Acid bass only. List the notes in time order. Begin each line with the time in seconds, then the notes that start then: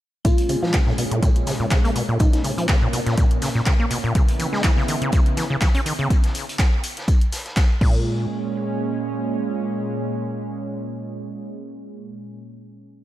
0.25 A#2
0.49 C#3
0.63 F3
0.74 C#3
0.87 A#2
0.98 B2
1.11 A#2
1.22 A#2
1.47 C#3
1.60 A#2
1.71 C#3
1.84 A#3
1.95 B2
2.09 A#2
2.20 A#2
2.44 C#3
2.58 F3
2.69 C#3
2.82 A#2
2.93 B2
3.06 A#2
3.18 A#2
3.42 C#3
3.55 A#2
3.66 C#3
3.80 A#3
3.91 B2
4.04 A#2
4.15 C#3
4.39 E3
4.53 G#3
4.64 E3
4.77 C#3
4.88 D#3
5.02 C#3
5.13 C#3
5.37 E3
5.50 C#3
5.62 E3
5.75 C#4
5.86 D#3
5.99 C#3
7.81 A#2